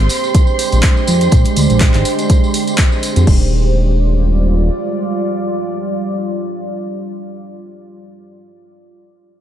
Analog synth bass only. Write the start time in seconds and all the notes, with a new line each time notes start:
0.72 A#1
1.08 F2
1.32 A#1
1.57 D2
1.70 A#1
1.94 G#1
3.16 F2
3.27 D#1